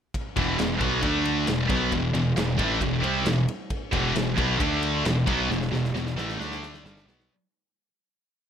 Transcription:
0.14 kick, ride
0.36 E1 E2 B2 E3, kick, ride
0.58 E1 E2 B2, snare, ride
0.81 B1 B2 F#3 B3, kick, ride
1.02 D2 D3 A3 D4, kick, ride
1.25 ride
1.47 E1 E2 B2, snare, ride
1.69 B1 B2 F#3 B3, kick, ride
1.92 E1 E2 B2, kick, ride
2.13 E1 E2 B2, ride
2.36 E1 E2 B2, snare, ride
2.58 A1 A2 E3 A3, kick, ride
2.80 E1 E2 B2, kick, ride
3.02 C2 C3 G3 C4, ride
3.25 E1 E2 B2, snare, ride
3.48 ride
3.70 kick, ride
3.92 E1 E2 B2 E3, kick, ride
4.15 E1 E2 B2, snare, ride
4.37 B1 B2 F#3 B3, kick, ride
4.60 D2 D3 A3 D4, kick, ride
4.83 ride
5.04 E1 E2 B2, snare, ride
5.27 B1 B2 F#3 B3, kick, ride
5.50 E1 E2 B2, snare
5.62 snare
5.71 E1 E2 B2, snare
5.85 snare
5.94 E1 E2 B2, snare
6.07 snare
6.16 A1 A2 E3 A3, snare
6.29 snare
6.38 D2 D3 A3 D4, snare
6.52 snare
6.63 snare
6.74 snare
6.83 G1 G2 D3 G3, snare
6.97 snare
7.06 B1 B2 F#3 B3, snare
7.20 snare

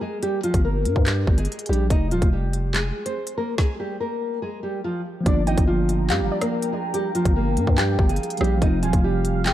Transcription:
0.01 G#3 G#4
0.23 G3 G4, closed hi-hat
0.43 F3 F4, closed hi-hat
0.54 G1, kick, closed hi-hat
0.65 A#3 A#4
0.85 G2, closed hi-hat
0.96 G2, kick
1.06 G3 G4, clap, closed hi-hat
1.27 G1, kick
1.38 G#3 G#4, closed hi-hat
1.45 closed hi-hat
1.52 closed hi-hat
1.59 closed hi-hat
1.66 A#1 G4, closed hi-hat
1.70 G3, closed hi-hat
1.90 F1 D#4 D#5, kick, closed hi-hat
2.11 D#1 F3 F4, closed hi-hat
2.22 F1, kick, closed hi-hat
2.33 G3 G4
2.53 closed hi-hat
2.74 G#3 G#4, clap, closed hi-hat
3.06 C4 C5, closed hi-hat
3.27 closed hi-hat
3.38 A#3 A#4
3.58 G#3 G#4, kick, snare
3.80 G3 G4
4.00 A#3 A#4
4.42 G#3 G#4
4.63 G3 G4
4.84 F3 F4
5.21 F3 A#3
5.26 G1 D4 F4 D5 F5 G5 A#5, kick, closed hi-hat
5.47 G#1 D#4 D#5 G5, closed hi-hat
5.58 G1, kick, closed hi-hat
5.67 F3 F4
5.89 closed hi-hat
6.10 G2 G3 G4 F5, clap, closed hi-hat
6.20 G1
6.32 D5
6.41 A#3 A#4, cross-stick, closed hi-hat
6.62 closed hi-hat
6.72 G#3 G#4
6.94 G3 G4, closed hi-hat
7.15 F3 F4, closed hi-hat
7.25 G1, kick, closed hi-hat
7.36 A#3 A#4
7.57 G2, closed hi-hat
7.67 G2, kick
7.78 G3 G4 G5, clap, closed hi-hat
7.99 G1, kick
8.09 G#3 G#4, closed hi-hat
8.16 closed hi-hat
8.23 closed hi-hat
8.30 closed hi-hat
8.37 A#1 F3 A#3 G4, cross-stick, closed hi-hat
8.41 G3 D4 G4, closed hi-hat
8.57 F3
8.62 F1 C4 D#4 F4 D#5, kick, closed hi-hat
8.66 F4
8.83 D#1 F3 F4 G#5, closed hi-hat
8.93 F1, kick, closed hi-hat
9.04 G3 G4
9.25 closed hi-hat
9.45 G#3 G#4 G5, clap, closed hi-hat

